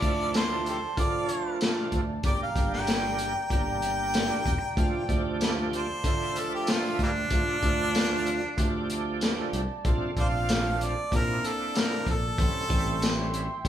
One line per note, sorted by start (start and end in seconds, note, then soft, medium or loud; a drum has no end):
0.00 0.79 D2 medium
0.00 0.80 F3 medium
0.00 0.80 A3 medium
0.00 0.80 D4 medium
0.00 0.81 E4 medium
0.00 0.33 D5 medium
0.00 12.35 D5 medium
0.00 2.22 A5 medium
0.00 kick medium
0.00 closed hi-hat medium
0.34 0.66 C5 medium
0.34 snare loud
0.34 closed hi-hat medium
0.34 tambourine loud
0.66 0.77 G4 soft
0.66 0.77 A4 soft
0.66 0.98 C5 medium
0.66 closed hi-hat medium
0.97 1.23 D3 medium
0.97 2.01 F3 medium
0.97 2.01 A3 medium
0.97 2.01 D4 medium
0.97 2.01 F4 medium
0.97 1.60 D5 medium
0.97 kick medium
0.97 closed hi-hat medium
1.29 closed hi-hat medium
1.61 snare loud
1.61 closed hi-hat medium
1.61 tambourine loud
1.92 2.18 D2 medium
1.92 kick medium
1.92 closed hi-hat medium
2.23 2.37 G1 medium
2.23 2.50 G3 medium
2.23 2.50 A#3 medium
2.23 2.50 D4 medium
2.23 2.50 G4 medium
2.23 2.40 D5 medium
2.23 4.75 G5 medium
2.23 4.75 A#5 medium
2.23 kick medium
2.23 closed hi-hat medium
2.42 2.72 F5 medium
2.42 muted fingered electric bass stroke soft
2.55 3.33 G1 medium
2.55 3.33 G3 medium
2.55 3.33 A#3 medium
2.55 3.33 D4 medium
2.55 3.33 G4 medium
2.55 kick medium
2.55 closed hi-hat medium
2.73 3.50 G5 medium
2.73 snare soft
2.87 snare loud
2.87 closed hi-hat medium
2.87 tambourine loud
3.18 closed hi-hat medium
3.50 4.28 G1 medium
3.50 4.54 G3 medium
3.50 4.54 A#3 medium
3.50 4.55 D4 medium
3.50 4.55 G4 medium
3.50 5.38 G5 loud
3.50 kick medium
3.50 closed hi-hat medium
3.82 closed hi-hat medium
4.14 snare loud
4.14 closed hi-hat medium
4.14 tambourine medium
4.45 4.59 E1 medium
4.45 kick medium
4.45 closed hi-hat medium
4.62 muted fingered electric bass stroke soft
4.77 4.90 D2 medium
4.77 5.03 F3 medium
4.77 5.03 A3 medium
4.77 5.04 D4 medium
4.77 9.81 F4 medium
4.77 5.04 F4 medium
4.77 12.34 A5 medium
4.77 kick loud
4.77 closed hi-hat medium
5.08 5.86 D2 medium
5.08 5.87 F3 medium
5.08 5.87 A3 medium
5.08 5.87 D4 medium
5.08 5.87 G4 loud
5.08 kick medium
5.08 closed hi-hat medium
5.41 snare loud
5.41 closed hi-hat medium
5.41 tambourine loud
5.73 6.41 C5 medium
5.73 closed hi-hat medium
6.04 6.30 D3 medium
6.04 7.08 F3 medium
6.04 7.09 A3 medium
6.04 7.09 D4 medium
6.04 7.09 E5 medium
6.04 kick medium
6.04 closed hi-hat medium
6.36 6.53 A4 loud
6.36 closed hi-hat medium
6.55 6.72 G4 medium
6.67 7.00 F4 medium
6.67 snare loud
6.67 closed hi-hat medium
6.67 tambourine loud
6.99 7.25 D2 medium
6.99 kick medium
6.99 closed hi-hat medium
7.03 7.11 G3 medium
7.03 7.11 A#3 medium
7.03 8.88 D4 loud
7.30 7.44 D2 medium
7.30 7.57 F3 medium
7.30 7.58 A3 medium
7.30 7.58 D4 medium
7.30 7.58 F4 medium
7.30 kick loud
7.30 closed hi-hat medium
7.48 muted fingered electric bass stroke soft
7.63 8.40 D2 medium
7.63 8.41 F3 medium
7.63 8.41 A3 medium
7.63 8.41 D4 medium
7.63 8.42 F4 medium
7.63 kick medium
7.63 closed hi-hat medium
7.95 snare loud
7.95 closed hi-hat medium
7.95 tambourine loud
8.26 closed hi-hat medium
8.57 9.35 D2 medium
8.57 9.61 F3 medium
8.57 9.62 A3 medium
8.57 9.62 D4 medium
8.57 9.62 G4 medium
8.57 kick medium
8.57 closed hi-hat medium
8.90 closed hi-hat medium
9.21 snare loud
9.21 closed hi-hat medium
9.21 tambourine medium
9.53 9.66 C2 medium
9.53 closed hi-hat medium
9.69 muted fingered electric bass stroke soft
9.85 9.98 A#1 medium
9.85 10.11 A3 medium
9.85 10.11 C4 medium
9.85 10.11 D4 medium
9.85 10.11 F4 medium
9.85 kick loud
9.85 closed hi-hat medium
10.17 10.94 A#1 medium
10.17 10.95 A3 medium
10.17 10.95 C4 medium
10.17 10.95 D4 medium
10.17 10.96 F4 medium
10.17 10.27 C5 medium
10.17 10.27 D5 medium
10.17 10.85 F5 medium
10.17 kick medium
10.17 closed hi-hat medium
10.49 snare loud
10.49 closed hi-hat medium
10.49 tambourine loud
10.81 11.13 D5 medium
10.81 closed hi-hat medium
11.11 11.38 A#2 medium
11.11 12.15 A#3 medium
11.11 12.15 C4 medium
11.11 12.15 D4 medium
11.11 12.16 E4 medium
11.11 kick medium
11.11 closed hi-hat medium
11.16 11.48 A#4 medium
11.44 11.81 A4 medium
11.44 closed hi-hat medium
11.75 snare loud
11.75 closed hi-hat medium
11.75 tambourine loud
11.79 12.08 A#4 medium
12.06 12.32 A#1 medium
12.06 kick medium
12.06 closed hi-hat medium
12.11 13.32 A4 loud
12.38 12.51 A1 medium
12.38 12.64 G3 medium
12.38 12.64 C4 medium
12.38 12.65 C#4 medium
12.38 12.65 E4 medium
12.38 13.68 E5 medium
12.38 13.68 G5 medium
12.38 13.68 C6 medium
12.38 kick loud
12.38 closed hi-hat medium
12.54 muted fingered electric bass stroke soft
12.69 13.47 A1 medium
12.69 13.47 G3 medium
12.69 13.47 C4 medium
12.69 13.47 C#4 medium
12.69 13.47 E4 medium
12.69 kick medium
12.69 closed hi-hat medium
13.02 snare loud
13.02 closed hi-hat medium
13.02 tambourine loud
13.34 closed hi-hat medium
13.65 13.68 A1 medium
13.65 13.68 G3 medium
13.65 kick medium
13.65 closed hi-hat medium